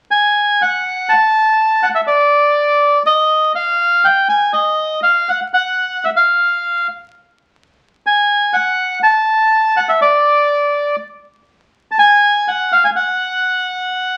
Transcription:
0.11 G#5
0.62 F#5
1.09 A5
1.83 F#5
1.95 E5
2.07 D5
3.06 D#5
3.55 F5
4.04 G5
4.29 G#5
4.53 D#5
5.03 F5
5.29 F#5
5.54 F#5
6.04 E5
6.16 F5
8.06 G#5
8.53 F#5
9.03 A5
9.77 F#5
9.89 E5
10.01 D5
11.91 A5
11.99 G#5
12.48 F#5
12.72 F5
12.84 G#5
12.96 F#5

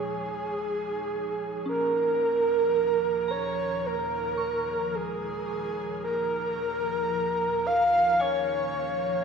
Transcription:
Already playing: D#2 A#2 F3 D#4 G#4 C#5
1.66 C#4 A#4
3.28 C#5 A#5
3.86 A#4
4.37 C#6
4.95 G#4
6.04 A#4
7.66 F5
8.19 C#5 G#5

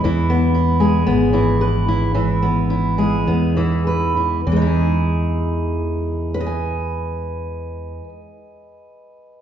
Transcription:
Already playing: G#3 B4
0.04 E2 E3 E4
0.30 B3
0.54 E4
0.80 G#3 G#4
1.07 G#1 B3
1.33 E3 E4
1.61 B4
1.88 E4
2.14 E3 E4
2.42 B3
2.70 E4
2.98 G#3 G#4
3.27 E2 B3
3.57 E3 E4
3.87 B4
4.17 E4
4.47 E2 E3
4.52 G#3
4.56 D#4
4.62 E4
4.67 G#4
6.34 B4
6.41 D#5
6.46 G#5

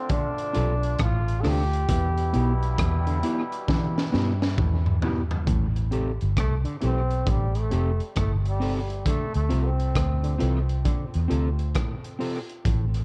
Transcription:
Already playing: D3 A3 C4 F4
0.09 D3 D4, kick, closed hi-hat
0.38 closed hi-hat
0.53 B1 C3 D4 F4 A4, closed hi-hat
0.83 closed hi-hat
0.99 A1 A2 F4, kick, cross-stick, closed hi-hat
1.28 closed hi-hat
1.41 C3 D4 F4 A4, open hi-hat
1.45 D2 G4 A4, cross-stick
1.73 closed hi-hat
1.88 E2 B2 E3 G3 E4, kick, closed hi-hat
2.18 closed hi-hat
2.33 B1 B2 B3 E4 G4, closed hi-hat
2.63 closed hi-hat
2.78 E2, kick, cross-stick, closed hi-hat
3.07 D3, closed hi-hat
3.23 E3 B3 E4 G4, closed hi-hat
3.52 closed hi-hat
3.67 D3 E3, kick, snare
3.98 snare
4.12 G2 B2 B3 E4 G4, snare
4.42 muted clean electric guitar stroke, snare
4.57 E2 A2, kick, mid tom
4.86 mid tom
5.01 B2 B3 E4 G4, floor tom
5.31 floor tom
5.46 A1 A2, kick, closed hi-hat
5.76 closed hi-hat
5.91 C3 C4 G4 A4, closed hi-hat
6.21 G1, closed hi-hat
6.37 C2 A3, kick, cross-stick, closed hi-hat
6.64 D3, closed hi-hat
6.81 B1 E3 C4 G4 A4, closed hi-hat
6.85 C4
7.10 closed hi-hat
7.25 A1 D3 G3, kick, closed hi-hat
7.55 A3, closed hi-hat
7.70 F1 C3 C4 G4 A4, closed hi-hat
8.00 closed hi-hat
8.15 G1 A2 A3, kick, cross-stick, closed hi-hat
8.45 G3, closed hi-hat
8.60 C3 C4 G4 A4, open hi-hat
8.78 G3
8.88 muted clean electric guitar stroke, closed hi-hat
9.05 D3 A3, kick, closed hi-hat
9.34 D2 A3, closed hi-hat
9.49 C2 C3 C4 F4 A4, closed hi-hat
9.66 C4
9.80 closed hi-hat
9.95 D2, kick, cross-stick, closed hi-hat
10.23 D3, closed hi-hat
10.38 C2 E3 C4 F4 A4, closed hi-hat
10.69 closed hi-hat
10.85 D3, kick, closed hi-hat
11.14 E2, closed hi-hat
11.28 D2 C3 C4 F4 A4, closed hi-hat
11.59 closed hi-hat
11.75 A2, kick, cross-stick, closed hi-hat
12.04 closed hi-hat
12.19 C3 C4 F4 A4, open hi-hat
12.49 closed hi-hat
12.65 A1 A2, kick, closed hi-hat
12.94 closed hi-hat

